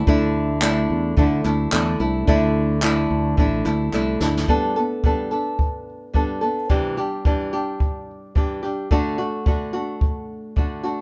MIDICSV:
0, 0, Header, 1, 5, 480
1, 0, Start_track
1, 0, Tempo, 552995
1, 58, Time_signature, 4, 2, 24, 8
1, 9559, End_track
2, 0, Start_track
2, 0, Title_t, "Reed electric piano"
2, 0, Program_c, 0, 4
2, 0, Control_c, 0, 64, 127
2, 49, Note_on_c, 0, 62, 69
2, 60, Note_on_c, 0, 64, 57
2, 69, Note_on_c, 0, 69, 64
2, 71, Control_c, 0, 64, 0
2, 83, Note_on_c, 0, 76, 71
2, 244, Control_c, 0, 64, 127
2, 1936, Note_off_c, 0, 62, 0
2, 1941, Note_off_c, 0, 64, 0
2, 1946, Note_off_c, 0, 69, 0
2, 1953, Note_off_c, 0, 76, 0
2, 1957, Note_on_c, 0, 62, 72
2, 1970, Note_on_c, 0, 64, 72
2, 1981, Note_on_c, 0, 69, 63
2, 1992, Note_on_c, 0, 76, 85
2, 3851, Note_off_c, 0, 62, 0
2, 3857, Note_off_c, 0, 64, 0
2, 3863, Note_off_c, 0, 69, 0
2, 3869, Note_off_c, 0, 76, 0
2, 3906, Control_c, 0, 64, 0
2, 9559, End_track
3, 0, Start_track
3, 0, Title_t, "Nylon-string guitar"
3, 0, Program_c, 1, 24
3, 60, Note_on_c, 1, 50, 85
3, 64, Note_on_c, 1, 57, 73
3, 69, Note_on_c, 1, 62, 84
3, 73, Note_on_c, 1, 64, 90
3, 529, Note_off_c, 1, 50, 0
3, 532, Note_on_c, 1, 50, 74
3, 535, Note_off_c, 1, 57, 0
3, 536, Note_off_c, 1, 64, 0
3, 539, Note_off_c, 1, 62, 0
3, 539, Note_on_c, 1, 57, 77
3, 543, Note_on_c, 1, 62, 77
3, 547, Note_on_c, 1, 64, 86
3, 1009, Note_off_c, 1, 50, 0
3, 1012, Note_on_c, 1, 50, 61
3, 1017, Note_off_c, 1, 57, 0
3, 1021, Note_off_c, 1, 64, 0
3, 1021, Note_on_c, 1, 57, 60
3, 1024, Note_off_c, 1, 62, 0
3, 1027, Note_on_c, 1, 62, 70
3, 1032, Note_on_c, 1, 64, 75
3, 1242, Note_off_c, 1, 64, 0
3, 1253, Note_on_c, 1, 64, 53
3, 1254, Note_off_c, 1, 50, 0
3, 1254, Note_off_c, 1, 62, 0
3, 1258, Note_off_c, 1, 57, 0
3, 1264, Note_on_c, 1, 62, 43
3, 1273, Note_on_c, 1, 57, 38
3, 1489, Note_off_c, 1, 57, 0
3, 1491, Note_on_c, 1, 50, 72
3, 1492, Note_off_c, 1, 62, 0
3, 1494, Note_off_c, 1, 64, 0
3, 1499, Note_on_c, 1, 57, 67
3, 1502, Note_on_c, 1, 62, 66
3, 1507, Note_on_c, 1, 64, 69
3, 1724, Note_off_c, 1, 64, 0
3, 1733, Note_off_c, 1, 50, 0
3, 1733, Note_off_c, 1, 62, 0
3, 1734, Note_on_c, 1, 64, 55
3, 1737, Note_off_c, 1, 57, 0
3, 1743, Note_on_c, 1, 62, 51
3, 1754, Note_on_c, 1, 57, 43
3, 1968, Note_off_c, 1, 57, 0
3, 1970, Note_off_c, 1, 62, 0
3, 1973, Note_on_c, 1, 50, 86
3, 1975, Note_off_c, 1, 64, 0
3, 1979, Note_on_c, 1, 57, 87
3, 1980, Note_on_c, 1, 62, 93
3, 1985, Note_on_c, 1, 64, 89
3, 2442, Note_off_c, 1, 50, 0
3, 2446, Note_on_c, 1, 50, 75
3, 2448, Note_off_c, 1, 57, 0
3, 2451, Note_on_c, 1, 57, 87
3, 2452, Note_off_c, 1, 64, 0
3, 2453, Note_off_c, 1, 62, 0
3, 2456, Note_on_c, 1, 62, 84
3, 2462, Note_on_c, 1, 64, 83
3, 2923, Note_off_c, 1, 50, 0
3, 2927, Note_on_c, 1, 50, 66
3, 2932, Note_off_c, 1, 57, 0
3, 2935, Note_on_c, 1, 57, 53
3, 2938, Note_off_c, 1, 64, 0
3, 2939, Note_off_c, 1, 62, 0
3, 2942, Note_on_c, 1, 62, 66
3, 2949, Note_on_c, 1, 64, 69
3, 3157, Note_off_c, 1, 64, 0
3, 3167, Note_on_c, 1, 64, 52
3, 3169, Note_off_c, 1, 62, 0
3, 3171, Note_off_c, 1, 50, 0
3, 3175, Note_off_c, 1, 57, 0
3, 3179, Note_on_c, 1, 62, 37
3, 3188, Note_on_c, 1, 57, 43
3, 3408, Note_off_c, 1, 57, 0
3, 3410, Note_off_c, 1, 62, 0
3, 3410, Note_on_c, 1, 50, 56
3, 3411, Note_off_c, 1, 64, 0
3, 3418, Note_on_c, 1, 57, 63
3, 3421, Note_on_c, 1, 62, 72
3, 3425, Note_on_c, 1, 64, 73
3, 3639, Note_off_c, 1, 64, 0
3, 3649, Note_on_c, 1, 64, 50
3, 3652, Note_off_c, 1, 62, 0
3, 3653, Note_off_c, 1, 50, 0
3, 3657, Note_off_c, 1, 57, 0
3, 3662, Note_on_c, 1, 62, 46
3, 3672, Note_on_c, 1, 57, 43
3, 3888, Note_off_c, 1, 62, 0
3, 3891, Note_on_c, 1, 55, 76
3, 3892, Note_off_c, 1, 64, 0
3, 3893, Note_off_c, 1, 57, 0
3, 3897, Note_on_c, 1, 59, 70
3, 3898, Note_on_c, 1, 62, 72
3, 3904, Note_on_c, 1, 69, 70
3, 4122, Note_off_c, 1, 69, 0
3, 4132, Note_on_c, 1, 69, 55
3, 4133, Note_off_c, 1, 55, 0
3, 4133, Note_off_c, 1, 62, 0
3, 4136, Note_off_c, 1, 59, 0
3, 4143, Note_on_c, 1, 62, 45
3, 4152, Note_on_c, 1, 59, 40
3, 4372, Note_off_c, 1, 59, 0
3, 4374, Note_off_c, 1, 69, 0
3, 4374, Note_on_c, 1, 55, 51
3, 4379, Note_off_c, 1, 62, 0
3, 4382, Note_on_c, 1, 59, 54
3, 4388, Note_on_c, 1, 62, 49
3, 4394, Note_on_c, 1, 69, 57
3, 4598, Note_off_c, 1, 69, 0
3, 4608, Note_on_c, 1, 69, 43
3, 4609, Note_off_c, 1, 62, 0
3, 4614, Note_off_c, 1, 55, 0
3, 4619, Note_off_c, 1, 59, 0
3, 4620, Note_on_c, 1, 62, 43
3, 4629, Note_on_c, 1, 59, 38
3, 5323, Note_off_c, 1, 59, 0
3, 5325, Note_on_c, 1, 55, 44
3, 5332, Note_off_c, 1, 69, 0
3, 5333, Note_on_c, 1, 59, 43
3, 5336, Note_off_c, 1, 62, 0
3, 5339, Note_on_c, 1, 62, 54
3, 5347, Note_on_c, 1, 69, 54
3, 5555, Note_off_c, 1, 69, 0
3, 5565, Note_on_c, 1, 69, 45
3, 5566, Note_off_c, 1, 62, 0
3, 5570, Note_off_c, 1, 55, 0
3, 5574, Note_off_c, 1, 59, 0
3, 5576, Note_on_c, 1, 62, 40
3, 5584, Note_on_c, 1, 59, 35
3, 5809, Note_off_c, 1, 62, 0
3, 5810, Note_off_c, 1, 69, 0
3, 5810, Note_on_c, 1, 48, 65
3, 5813, Note_off_c, 1, 59, 0
3, 5814, Note_on_c, 1, 52, 77
3, 5816, Note_on_c, 1, 55, 76
3, 5820, Note_on_c, 1, 62, 77
3, 5825, Note_on_c, 1, 67, 75
3, 6042, Note_off_c, 1, 67, 0
3, 6052, Note_off_c, 1, 62, 0
3, 6052, Note_on_c, 1, 67, 48
3, 6053, Note_off_c, 1, 48, 0
3, 6055, Note_off_c, 1, 52, 0
3, 6056, Note_off_c, 1, 55, 0
3, 6062, Note_on_c, 1, 62, 47
3, 6072, Note_on_c, 1, 55, 44
3, 6291, Note_off_c, 1, 55, 0
3, 6293, Note_on_c, 1, 52, 51
3, 6294, Note_off_c, 1, 67, 0
3, 6295, Note_off_c, 1, 62, 0
3, 6301, Note_on_c, 1, 55, 54
3, 6305, Note_on_c, 1, 62, 60
3, 6314, Note_on_c, 1, 67, 56
3, 6524, Note_off_c, 1, 67, 0
3, 6532, Note_off_c, 1, 62, 0
3, 6534, Note_off_c, 1, 52, 0
3, 6534, Note_on_c, 1, 67, 46
3, 6538, Note_off_c, 1, 55, 0
3, 6543, Note_on_c, 1, 62, 47
3, 6553, Note_on_c, 1, 55, 38
3, 7248, Note_off_c, 1, 55, 0
3, 7249, Note_on_c, 1, 52, 48
3, 7255, Note_off_c, 1, 67, 0
3, 7258, Note_on_c, 1, 55, 42
3, 7260, Note_off_c, 1, 62, 0
3, 7264, Note_on_c, 1, 62, 56
3, 7271, Note_on_c, 1, 67, 49
3, 7477, Note_off_c, 1, 67, 0
3, 7488, Note_on_c, 1, 67, 45
3, 7490, Note_off_c, 1, 62, 0
3, 7493, Note_off_c, 1, 52, 0
3, 7497, Note_off_c, 1, 55, 0
3, 7500, Note_on_c, 1, 62, 45
3, 7509, Note_on_c, 1, 55, 40
3, 7729, Note_off_c, 1, 62, 0
3, 7731, Note_on_c, 1, 50, 71
3, 7732, Note_off_c, 1, 55, 0
3, 7732, Note_off_c, 1, 67, 0
3, 7735, Note_on_c, 1, 57, 77
3, 7740, Note_on_c, 1, 62, 76
3, 7744, Note_on_c, 1, 66, 74
3, 7958, Note_off_c, 1, 66, 0
3, 7969, Note_on_c, 1, 66, 59
3, 7970, Note_off_c, 1, 62, 0
3, 7974, Note_off_c, 1, 50, 0
3, 7976, Note_off_c, 1, 57, 0
3, 7980, Note_on_c, 1, 62, 45
3, 7991, Note_on_c, 1, 57, 46
3, 8207, Note_off_c, 1, 57, 0
3, 8210, Note_on_c, 1, 50, 54
3, 8212, Note_off_c, 1, 66, 0
3, 8213, Note_off_c, 1, 62, 0
3, 8217, Note_on_c, 1, 57, 52
3, 8223, Note_on_c, 1, 62, 58
3, 8230, Note_on_c, 1, 66, 53
3, 8436, Note_off_c, 1, 66, 0
3, 8446, Note_on_c, 1, 66, 50
3, 8447, Note_off_c, 1, 62, 0
3, 8453, Note_off_c, 1, 50, 0
3, 8456, Note_off_c, 1, 57, 0
3, 8458, Note_on_c, 1, 62, 49
3, 8467, Note_on_c, 1, 57, 41
3, 9164, Note_off_c, 1, 57, 0
3, 9166, Note_on_c, 1, 50, 43
3, 9169, Note_off_c, 1, 62, 0
3, 9175, Note_on_c, 1, 57, 42
3, 9179, Note_on_c, 1, 62, 45
3, 9183, Note_off_c, 1, 66, 0
3, 9187, Note_on_c, 1, 66, 48
3, 9394, Note_off_c, 1, 66, 0
3, 9405, Note_off_c, 1, 62, 0
3, 9405, Note_on_c, 1, 66, 49
3, 9411, Note_off_c, 1, 50, 0
3, 9415, Note_off_c, 1, 57, 0
3, 9415, Note_on_c, 1, 62, 47
3, 9426, Note_on_c, 1, 57, 35
3, 9559, Note_off_c, 1, 57, 0
3, 9559, Note_off_c, 1, 62, 0
3, 9559, Note_off_c, 1, 66, 0
3, 9559, End_track
4, 0, Start_track
4, 0, Title_t, "Fretless electric bass"
4, 0, Program_c, 2, 35
4, 63, Note_on_c, 2, 38, 86
4, 744, Note_off_c, 2, 38, 0
4, 779, Note_on_c, 2, 40, 76
4, 975, Note_off_c, 2, 40, 0
4, 1018, Note_on_c, 2, 50, 93
4, 1214, Note_off_c, 2, 50, 0
4, 1255, Note_on_c, 2, 38, 86
4, 1452, Note_off_c, 2, 38, 0
4, 1497, Note_on_c, 2, 40, 63
4, 1693, Note_off_c, 2, 40, 0
4, 1737, Note_on_c, 2, 36, 95
4, 1933, Note_off_c, 2, 36, 0
4, 1977, Note_on_c, 2, 38, 87
4, 2661, Note_off_c, 2, 38, 0
4, 2695, Note_on_c, 2, 38, 77
4, 2892, Note_off_c, 2, 38, 0
4, 2933, Note_on_c, 2, 33, 84
4, 3131, Note_off_c, 2, 33, 0
4, 3175, Note_on_c, 2, 38, 79
4, 3372, Note_off_c, 2, 38, 0
4, 3412, Note_on_c, 2, 36, 62
4, 3610, Note_off_c, 2, 36, 0
4, 3650, Note_on_c, 2, 38, 85
4, 3849, Note_off_c, 2, 38, 0
4, 9559, End_track
5, 0, Start_track
5, 0, Title_t, "Drums"
5, 62, Note_on_c, 9, 36, 101
5, 149, Note_off_c, 9, 36, 0
5, 537, Note_on_c, 9, 39, 102
5, 540, Note_off_c, 9, 39, 0
5, 540, Note_on_c, 9, 39, 70
5, 627, Note_off_c, 9, 39, 0
5, 1018, Note_on_c, 9, 36, 95
5, 1105, Note_off_c, 9, 36, 0
5, 1261, Note_on_c, 9, 39, 67
5, 1348, Note_off_c, 9, 39, 0
5, 1496, Note_on_c, 9, 39, 97
5, 1498, Note_off_c, 9, 39, 0
5, 1498, Note_on_c, 9, 39, 72
5, 1584, Note_off_c, 9, 39, 0
5, 1977, Note_on_c, 9, 36, 107
5, 2063, Note_off_c, 9, 36, 0
5, 2451, Note_on_c, 9, 39, 105
5, 2457, Note_off_c, 9, 39, 0
5, 2457, Note_on_c, 9, 39, 70
5, 2544, Note_off_c, 9, 39, 0
5, 2933, Note_on_c, 9, 36, 92
5, 3020, Note_off_c, 9, 36, 0
5, 3177, Note_on_c, 9, 39, 66
5, 3264, Note_off_c, 9, 39, 0
5, 3413, Note_on_c, 9, 39, 68
5, 3500, Note_off_c, 9, 39, 0
5, 3650, Note_on_c, 9, 38, 81
5, 3737, Note_off_c, 9, 38, 0
5, 3795, Note_on_c, 9, 38, 77
5, 3882, Note_off_c, 9, 38, 0
5, 3891, Note_on_c, 9, 36, 74
5, 3978, Note_off_c, 9, 36, 0
5, 4372, Note_on_c, 9, 36, 98
5, 4459, Note_off_c, 9, 36, 0
5, 4852, Note_on_c, 9, 36, 81
5, 4939, Note_off_c, 9, 36, 0
5, 5334, Note_on_c, 9, 36, 81
5, 5421, Note_off_c, 9, 36, 0
5, 5814, Note_on_c, 9, 36, 88
5, 5901, Note_off_c, 9, 36, 0
5, 6295, Note_on_c, 9, 36, 99
5, 6382, Note_off_c, 9, 36, 0
5, 6773, Note_on_c, 9, 36, 79
5, 6860, Note_off_c, 9, 36, 0
5, 7254, Note_on_c, 9, 36, 93
5, 7341, Note_off_c, 9, 36, 0
5, 7733, Note_on_c, 9, 36, 93
5, 7820, Note_off_c, 9, 36, 0
5, 8213, Note_on_c, 9, 36, 98
5, 8300, Note_off_c, 9, 36, 0
5, 8691, Note_on_c, 9, 36, 89
5, 8778, Note_off_c, 9, 36, 0
5, 9172, Note_on_c, 9, 36, 80
5, 9259, Note_off_c, 9, 36, 0
5, 9559, End_track
0, 0, End_of_file